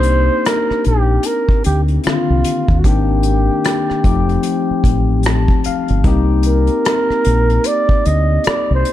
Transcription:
Already playing: fingered electric bass C2, tine electric piano A#3 C4 D4 D#4 G4, flugelhorn C5
0.03 closed hi-hat
0.45 flugelhorn A#4, cross-stick, closed hi-hat
0.71 muted fingered electric bass stroke, cross-stick
0.84 fingered electric bass A#1, flugelhorn G4, closed hi-hat
1.23 flugelhorn A#4, closed hi-hat
1.49 muted fingered electric bass stroke, kick
1.64 fingered electric bass D2, flugelhorn G4, closed hi-hat
1.88 closed hi-hat
2.04 tine electric piano D3 A#3 C4 D4 F4, flugelhorn F4, muted fingered electric bass stroke, cross-stick, closed hi-hat
2.12 tine electric piano D#3
2.30 fingered electric bass C2
2.44 closed hi-hat
2.68 fingered electric bass D#2, kick
2.80 flugelhorn F#4
2.84 fingered electric bass G#1, tine electric piano D#3 A#3 C4 D4 G4, flugelhorn G4, kick, closed hi-hat
3.23 closed hi-hat
3.64 cross-stick, closed hi-hat
3.90 muted fingered electric bass stroke, cross-stick
4.04 fingered electric bass F1, tine electric piano F3 A3 C4 D#4 G4, kick, closed hi-hat
4.29 closed hi-hat
4.43 closed hi-hat
4.71 muted fingered electric bass stroke
4.84 fingered electric bass A1, kick, closed hi-hat
5.23 tine electric piano A5, cross-stick, closed hi-hat
5.48 kick
5.64 tine electric piano F5, muted fingered electric bass stroke, closed hi-hat
5.88 fingered electric bass G1, closed hi-hat
6.04 fingered electric bass C2, tine electric piano A#3 C4 D#4 G4, kick, closed hi-hat
6.43 closed hi-hat
6.47 flugelhorn A#4
6.67 closed hi-hat
6.85 cross-stick, closed hi-hat
7.10 muted fingered electric bass stroke, cross-stick
7.25 fingered electric bass A#1, closed hi-hat
7.50 closed hi-hat
7.64 flugelhorn D5, closed hi-hat
7.89 muted fingered electric bass stroke, kick
8.05 fingered electric bass D2, flugelhorn D#5, closed hi-hat
8.44 flugelhorn D5, muted fingered electric bass stroke, cross-stick, closed hi-hat
8.71 fingered electric bass C2, flugelhorn C5
8.85 closed hi-hat

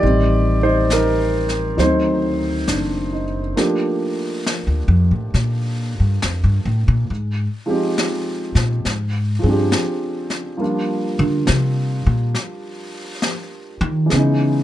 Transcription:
Already playing: upright piano G4 D5
0.00 upright bass A1, upright piano D#3 G3 C4, brush sweep
0.63 upright piano D#4 C5
0.90 upright piano D#4 A#4, snare, hi-hat pedal
1.49 snare
1.77 upright bass D2, upright piano D#3 F#3 A3 D#4 C5, brush sweep, snare
1.82 upright piano C4
2.68 upright bass F#1, upright piano D4, snare, hi-hat pedal
3.12 upright piano D#4
3.56 upright piano F3 A3 A#3 D4 G4, brush sweep, snare
4.46 snare
4.67 upright bass D2
4.88 upright bass F2
5.11 upright bass A2
5.34 upright bass A#2, brush sweep, snare
6.00 upright bass G2
6.22 upright bass F2, snare
6.44 upright bass G2
6.65 upright bass A2
6.88 upright bass A#2
7.10 upright bass G#2, brush sweep
7.66 upright piano F3 G#3 C4
7.70 upright piano D#4 G4
7.98 snare
8.55 upright bass A#2, snare
8.85 upright bass G#2, brush sweep, snare
9.39 upright piano F3 G#4
9.44 upright bass G2, upright piano C4 D4
9.50 upright piano G4
9.72 snare
10.30 snare
10.57 upright piano F3 G3 A#3 D4, brush sweep
10.62 upright piano F4
11.19 upright bass D3
11.47 upright bass C3, snare
12.06 upright bass A#2
12.35 brush sweep, snare
13.22 snare
13.81 upright bass D#3
14.06 upright piano E3 G#3
14.10 upright bass C#3, upright piano B3, brush sweep, snare
14.15 upright piano C#4 D#4

